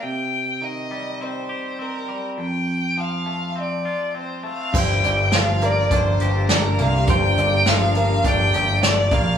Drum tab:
CC |--------|--------|x-------|--------|
HH |--------|--------|-xxxxxxx|xxxxxxxx|
SD |--------|--------|--o---o-|--o---o-|
BD |--------|--------|o---o---|o---o--o|